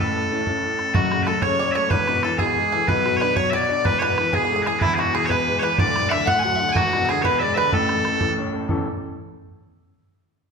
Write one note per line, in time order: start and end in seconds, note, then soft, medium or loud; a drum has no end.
0.00 0.91 A1 medium
0.00 0.92 A2 medium
0.00 0.75 A4 medium
0.00 0.94 A4 medium
0.15 bodhran soft
0.31 0.45 A3 soft
0.31 0.46 C#4 soft
0.31 0.46 E4 medium
0.47 0.78 A3 soft
0.47 0.78 C#4 soft
0.47 0.79 E4 medium
0.47 bodhran medium
0.63 bodhran soft
0.79 bodhran medium
0.94 1.87 F#1 medium
0.94 1.88 F#2 medium
0.94 1.23 F#4 medium
0.94 1.28 F#4 medium
0.94 bodhran medium
1.11 1.27 C#3 soft
1.11 bodhran medium
1.23 1.42 A4 medium
1.23 1.27 B4 medium
1.23 bodhran medium
1.27 1.43 A3 medium
1.27 1.43 A4 medium
1.27 1.41 A4 medium
1.41 1.60 C#3 medium
1.41 1.72 C#5 medium
1.41 1.71 C#5 medium
1.41 1.59 C#5 medium
1.41 bodhran loud
1.59 1.76 C#4 medium
1.59 1.74 D5 medium
1.59 bodhran soft
1.71 1.90 C#5 medium
1.71 1.76 E5 medium
1.76 1.91 A3 soft
1.76 1.91 C#5 medium
1.89 2.85 E1 medium
1.89 2.85 E2 medium
1.89 2.39 B4 medium
1.89 2.23 B4 loud
1.89 2.07 B4 medium
1.89 bodhran medium
2.07 2.24 B2 medium
2.07 2.23 B4 medium
2.07 bodhran medium
2.23 2.39 E3 medium
2.23 2.38 A4 medium
2.23 2.39 A4 medium
2.23 bodhran medium
2.37 2.57 B2 medium
2.37 2.89 G#4 medium
2.37 2.87 G#4 medium
2.37 2.70 G#4 medium
2.37 bodhran medium
2.56 2.72 G#3 medium
2.56 bodhran soft
2.72 2.88 E3 medium
2.72 2.87 A4 medium
2.87 3.82 B1 medium
2.87 3.83 B2 medium
2.87 3.19 B4 medium
2.87 3.17 B4 loud
2.87 3.19 B4 medium
2.87 bodhran medium
3.05 3.21 F#3 medium
3.05 bodhran medium
3.17 3.38 B4 medium
3.17 3.21 C#5 loud
3.21 3.36 D4 medium
3.21 3.36 B4 loud
3.21 3.36 B4 medium
3.21 bodhran medium
3.35 3.52 F#3 medium
3.35 3.50 C#5 loud
3.35 3.55 C#5 medium
3.35 3.52 C#5 medium
3.35 bodhran medium
3.50 3.69 F#4 medium
3.50 3.83 D5 loud
3.50 3.87 D5 medium
3.50 3.86 D5 medium
3.50 3.54 E5 medium
3.50 bodhran soft
3.69 3.84 D4 soft
3.85 4.78 E1 medium
3.85 4.79 E2 medium
3.85 4.01 B4 medium
3.85 3.99 B4 loud
3.85 4.01 B4 medium
3.85 bodhran medium
3.99 4.18 B2 medium
3.99 4.34 B4 medium
3.99 4.03 C#5 loud
3.99 bodhran medium
4.03 4.34 B4 loud
4.18 4.33 E3 medium
4.18 bodhran medium
4.33 4.50 B2 medium
4.33 4.51 G#4 medium
4.33 4.43 G#4 medium
4.33 4.62 G#4 loud
4.33 bodhran loud
4.45 4.55 G#4 medium
4.49 4.66 G#3 medium
4.49 4.64 A4 medium
4.56 4.66 G#4 medium
4.62 4.81 E3 soft
4.62 4.83 G#4 medium
4.62 4.66 B4 medium
4.66 4.79 G#4 medium
4.66 4.81 G#4 medium
4.66 bodhran medium
4.79 5.74 E1 medium
4.79 5.75 E2 medium
4.79 5.00 E4 medium
4.79 4.98 E4 medium
4.79 4.94 E4 loud
4.79 4.82 B4 loud
4.79 bodhran medium
4.94 4.99 G#4 medium
4.98 5.14 B2 medium
4.98 5.15 F#4 medium
4.98 5.13 F#4 medium
4.98 5.15 F#4 medium
4.98 bodhran medium
5.13 5.29 E3 medium
5.13 5.30 G#4 medium
5.13 5.31 G#4 medium
5.13 5.25 G#4 loud
5.13 bodhran medium
5.25 5.46 B2 medium
5.25 5.61 B4 medium
5.25 5.30 C#5 loud
5.30 5.59 B4 loud
5.30 5.61 B4 medium
5.30 bodhran medium
5.47 5.62 G#3 medium
5.47 bodhran soft
5.59 5.78 E3 soft
5.59 5.76 B4 medium
5.59 5.79 B4 loud
5.59 5.78 B4 medium
5.59 5.63 C#5 loud
5.76 6.71 D1 medium
5.76 6.72 D2 medium
5.76 6.10 D5 medium
5.76 6.09 D5 loud
5.76 6.11 D5 medium
5.76 bodhran medium
5.96 6.11 A2 medium
5.96 bodhran medium
6.09 6.26 D3 medium
6.09 6.27 E5 medium
6.09 6.27 E5 loud
6.09 6.28 E5 loud
6.09 6.12 F#5 loud
6.09 bodhran medium
6.25 6.43 A2 medium
6.25 6.41 F#5 loud
6.25 6.70 F#5 loud
6.25 6.72 F#5 loud
6.25 bodhran medium
6.39 6.57 F#5 medium
6.39 6.44 G#5 medium
6.45 6.59 F#3 medium
6.45 bodhran soft
6.55 6.75 D3 medium
6.55 6.61 E5 medium
6.59 6.76 F#5 medium
6.69 6.75 G#4 medium
6.69 6.76 G#5 loud
6.75 7.68 E1 medium
6.75 7.69 E2 medium
6.75 7.23 F#4 medium
6.75 7.10 F#4 loud
6.75 7.02 F#4 medium
6.75 bodhran medium
6.93 7.08 B2 medium
6.93 bodhran medium
7.05 7.08 A4 medium
7.05 bodhran medium
7.09 7.24 D3 medium
7.09 7.23 G#4 loud
7.09 7.22 G#4 loud
7.22 7.40 B2 medium
7.22 7.42 B4 medium
7.22 7.54 B4 loud
7.22 7.39 B4 medium
7.22 7.26 C#5 medium
7.22 bodhran medium
7.39 7.56 G#3 medium
7.39 7.57 D5 loud
7.39 7.54 D5 medium
7.39 7.42 E5 medium
7.54 7.72 D3 medium
7.54 7.74 B4 medium
7.54 7.71 B4 loud
7.54 7.74 B4 loud
7.54 7.58 E5 loud
7.72 8.65 A1 medium
7.72 8.66 A2 medium
7.72 8.37 A4 medium
7.72 8.33 A4 medium
7.72 8.34 A4 loud
7.72 bodhran medium
7.89 8.05 E3 medium
7.89 bodhran medium
8.05 8.21 A3 medium
8.05 bodhran medium
8.21 8.37 E3 medium
8.21 bodhran loud
8.38 8.53 C#4 medium
8.38 bodhran soft
8.54 8.68 A3 soft
8.68 8.84 A1 medium
8.68 8.84 E2 soft
8.68 8.84 E3 medium
8.68 8.85 A3 medium
8.68 8.85 C#4 soft
8.68 8.85 A4 medium
8.68 bodhran medium